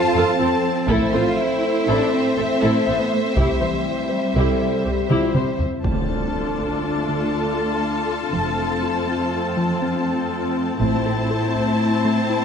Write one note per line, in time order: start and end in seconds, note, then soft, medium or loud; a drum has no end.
0.00 0.89 F3 medium
0.00 3.35 C4 medium
0.00 0.39 F4 medium
0.00 0.72 A4 medium
0.00 0.89 A4 medium
0.00 3.35 C5 medium
0.00 3.37 C5 medium
0.00 0.89 A5 medium
0.14 0.22 F2 medium
0.14 0.29 F3 medium
0.14 0.38 F4 medium
0.14 0.38 A4 medium
0.39 0.47 F2 soft
0.39 0.88 C4 medium
0.39 0.54 F4 soft
0.39 0.48 A4 soft
0.39 0.48 C5 soft
0.88 0.97 A1 medium
0.88 3.37 A3 medium
0.88 1.14 A3 medium
0.88 1.04 A3 medium
0.88 5.85 E4 medium
0.88 1.12 E4 medium
0.88 1.12 A4 medium
0.88 3.33 A4 medium
0.88 5.61 C5 medium
0.88 5.65 E5 medium
0.88 taiko medium
1.13 1.21 A1 soft
1.13 1.29 C4 medium
1.13 1.38 F4 medium
1.13 1.22 A4 soft
1.13 1.22 C5 soft
1.38 1.88 E4 medium
1.88 1.96 A1 medium
1.88 2.03 A3 medium
1.88 2.13 D4 medium
1.88 2.11 E4 medium
1.88 2.11 A4 medium
2.13 2.37 C4 medium
2.37 2.45 A1 soft
2.37 2.86 C4 medium
2.37 2.53 A4 medium
2.37 2.46 A4 soft
2.63 2.71 A1 medium
2.63 2.77 A3 medium
2.63 2.86 E4 medium
2.63 2.86 A4 soft
2.87 2.95 A1 soft
2.87 3.12 B3 medium
2.87 3.02 A4 medium
2.87 2.96 A4 soft
2.87 2.96 C5 soft
3.12 3.25 A3 medium
3.25 3.37 C4 medium
3.36 3.44 C2 soft
3.36 3.52 C3 medium
3.36 5.84 G3 medium
3.36 5.60 G3 medium
3.36 5.80 C4 medium
3.36 3.60 E4 soft
3.36 3.80 G4 soft
3.36 3.60 G4 medium
3.36 5.80 C5 medium
3.36 3.80 E5 soft
3.36 taiko medium
3.61 3.69 C2 soft
3.61 3.77 E3 medium
3.61 3.69 G4 soft
3.61 3.69 C5 soft
3.86 4.09 E4 soft
4.10 4.35 C5 medium
4.35 4.43 C2 medium
4.35 4.51 C3 medium
4.35 4.59 E4 soft
4.35 4.59 G4 soft
4.35 4.85 A4 medium
4.85 4.93 C2 soft
4.85 5.01 C4 medium
4.85 4.93 G4 soft
4.85 5.10 G4 soft
5.09 5.18 C2 soft
5.09 5.25 C3 medium
5.09 5.33 E4 medium
5.09 5.35 F4 soft
5.09 5.33 G4 soft
5.09 taiko mid medium
5.35 5.43 C2 soft
5.35 5.50 C4 medium
5.35 5.85 E4 soft
5.35 5.43 G4 soft
5.35 5.43 C5 soft
5.35 taiko mid medium
5.59 taiko low medium
5.84 6.31 D2 soft
5.84 8.29 D2 soft
5.84 6.00 D3 medium
5.84 10.76 A3 medium
5.84 8.28 D4 medium
5.84 8.28 D4 soft
5.84 10.76 F4 soft
5.84 10.76 F4 medium
5.84 8.28 A4 medium
5.84 10.76 A4 soft
5.84 10.76 A5 soft
5.84 taiko soft
5.84 impact soft
6.10 6.25 D4 soft
6.34 6.49 D4 soft
6.59 6.74 A3 soft
6.59 taiko soft
7.09 7.23 D3 medium
7.34 7.49 A3 soft
8.32 8.79 F1 soft
8.32 10.77 F2 soft
8.32 8.48 F3 medium
8.32 12.45 C4 soft
8.32 12.45 C4 medium
8.32 12.45 C5 medium
8.58 8.72 F4 medium
8.83 8.97 F4 soft
9.07 9.22 C4 soft
9.57 9.72 F3 medium
9.82 9.97 C4 soft
10.80 11.27 A1 medium
10.80 12.45 A2 medium
10.80 12.45 A3 medium
10.80 10.96 A3 medium
10.80 12.45 E4 medium
10.80 12.45 C5 medium
10.80 12.45 A5 medium
10.80 taiko medium
11.06 11.21 A4 medium
11.30 11.45 A4 medium
11.55 11.70 E4 soft
11.55 taiko soft
12.05 12.20 A3 medium
12.30 12.45 E4 medium